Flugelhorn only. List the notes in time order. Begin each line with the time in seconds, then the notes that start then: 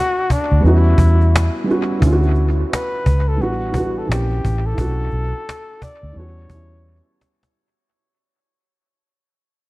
Already playing: F#4
0.31 D4
0.66 E4
2.72 B4
3.28 A4
3.41 F#4
3.98 A4
4.10 G4
4.66 A4
5.82 D5
6.17 C#5